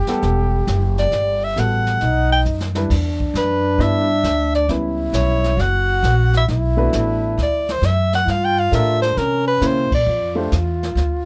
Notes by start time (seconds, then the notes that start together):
Already playing: G4
0.07 G3 B3 A4 F#5, snare
0.22 E1, brush sweep, snare
0.67 F#1, snare, hi-hat pedal
0.98 D5, snare
1.12 G1, brush sweep, snare
1.44 E5
1.56 A1 G3 B3 F#4 A4 F#5, snare, hi-hat pedal
1.87 snare
1.99 B1 D#4, brush sweep, snare
2.32 G5
2.45 F#2, hi-hat pedal
2.60 snare
2.75 G3 D4 E4 B4, snare
2.90 E2 D4, brush sweep, kick, snare, crash
3.20 kick
3.34 F#2 B4, snare, hi-hat pedal
3.78 G2 G3 B3 D4 E4 B4 E5, brush sweep, snare
4.24 D2, snare, hi-hat pedal
4.55 D5, snare
4.68 C#2 G3 B3 C#4 E4 B4, brush sweep, snare
5.13 B1 C#5, snare, hi-hat pedal
5.44 snare
5.57 F#1 F#4 F#5, brush sweep, snare
6.03 A#1, snare, hi-hat pedal
6.33 E5, snare
6.48 B1 E4, brush sweep, snare
6.77 A3 B3 D4 F#4 B4
6.93 A1, snare, hi-hat pedal
7.38 D2, brush sweep, snare
7.43 D5
7.69 C5, snare
7.82 F#2, snare, hi-hat pedal
7.86 E5
8.13 F#5, snare
8.26 G2 F4, brush sweep, snare
8.30 F5
8.44 G5
8.59 F5
8.72 A2 D4 F4 G4 A4 A#4 E5, snare, hi-hat pedal
9.02 C5, snare
9.17 C3 C#4 A#4, brush sweep, snare
9.48 B4
9.61 C#3 A#3 C#4 E4 G4 C#5, snare, hi-hat pedal
9.66 C5
9.77 C3
9.91 A#2 D5, kick, crash
10.06 F2 F4, brush sweep
10.35 A3 D4 F4 G4 C5
10.52 E2, snare, hi-hat pedal
10.83 snare
10.95 D2, brush sweep, snare